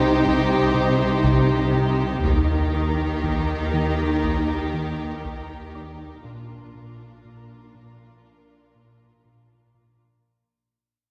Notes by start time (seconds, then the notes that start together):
Already playing: C2 C3 D#4 G4 C5
0.24 C4, taiko
0.74 C3
1.24 C3, taiko
1.74 C3
2.24 D#2 D#3 D#4 G4 A#4, taiko
2.73 D#3 D#6
3.23 D#3, taiko
3.73 D#3
4.24 D#4, taiko
4.74 D#3
5.24 D#3, taiko
5.74 D#3 D5 D6
6.24 A#1 A#2 D4 F4 A#4
6.75 A#2
7.24 A#2
7.75 A#2
8.25 A#3
8.75 A#2
9.25 A#2
9.74 A#2